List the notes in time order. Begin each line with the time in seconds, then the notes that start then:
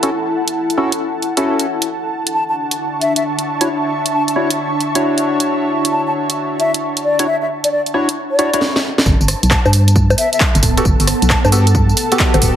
Already playing: E4 A4 F#5 A5
0.03 C#4 E4 F#4 A4, closed hi-hat
0.48 closed hi-hat
0.70 closed hi-hat
0.78 C#4 E4 F#4 A4
0.92 closed hi-hat
1.22 closed hi-hat
1.37 C#4 E4 F#4 A4, closed hi-hat
1.59 closed hi-hat
1.67 D4
1.82 closed hi-hat
1.90 A5 C#6
2.10 E5
2.27 closed hi-hat
2.34 A5
2.49 A5
2.71 closed hi-hat
3.01 E5, closed hi-hat
3.16 E5, closed hi-hat
3.39 closed hi-hat
3.61 D4 E4 F#4 C#5, closed hi-hat
4.06 closed hi-hat
4.13 A5
4.28 A5, closed hi-hat
4.36 D4 E4 F#4 C#5
4.50 closed hi-hat
4.80 closed hi-hat
4.95 D4 E4 F#4 C#5, closed hi-hat
5.18 closed hi-hat
5.40 closed hi-hat
5.85 closed hi-hat
5.92 A5
6.07 A5
6.30 closed hi-hat
6.60 E5, closed hi-hat
6.74 closed hi-hat
6.97 closed hi-hat
7.04 D5
7.19 D4 E4 F#4 C#5, closed hi-hat
7.27 E5
7.42 E5
7.64 D5, closed hi-hat
7.72 D5
7.86 closed hi-hat
7.94 D4 E4 F#4 C#5
8.09 closed hi-hat
8.31 D5
8.39 D4 E4 F#4 C#5, closed hi-hat
8.54 D4 E4 F#4 C#5, closed hi-hat
8.61 snare
8.76 snare
8.98 snare
9.06 G1 B3 A5, kick, tambourine
9.21 G1, tambourine
9.28 cross-stick, open hi-hat, tambourine
9.43 B1 A4, closed hi-hat, tambourine
9.51 A5, kick, cross-stick, clap, tambourine
9.65 G2 A5, tambourine, high bongo
9.73 open hi-hat, tambourine
9.88 F#5, closed hi-hat, tambourine
9.96 kick, tambourine
10.10 tambourine, high bongo
10.18 E5, open hi-hat, tambourine
10.33 E5, closed hi-hat, tambourine
10.40 kick, clap, tambourine
10.55 G1, closed hi-hat, tambourine
10.63 D1, kick, open hi-hat, tambourine
10.77 B3 F#4 G4 A4, cross-stick, closed hi-hat, tambourine
10.85 G1, kick, tambourine
11.00 G1, open hi-hat, tambourine
11.07 cross-stick, open hi-hat, tambourine
11.22 B1, closed hi-hat, tambourine
11.30 A5, kick, cross-stick, clap, tambourine
11.45 G2 A5, tambourine, high bongo
11.52 B3 F#4 G4 A4, open hi-hat, tambourine
11.67 closed hi-hat, tambourine
11.75 kick, tambourine
11.89 tambourine
11.97 open hi-hat, tambourine
12.12 B3 F#4 G4 A4, closed hi-hat, tambourine
12.19 kick, clap, tambourine
12.34 G1, closed hi-hat, tambourine, high bongo
12.42 D1, kick, open hi-hat, tambourine